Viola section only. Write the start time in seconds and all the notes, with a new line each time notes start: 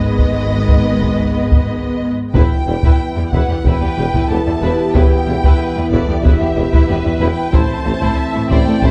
Already playing: G#3 B3
3.66 B4
4.31 A4
4.63 G4
5.60 B4
5.91 A4
6.24 G4
6.89 B4
7.53 C5
8.18 E5
8.50 D5
8.83 C5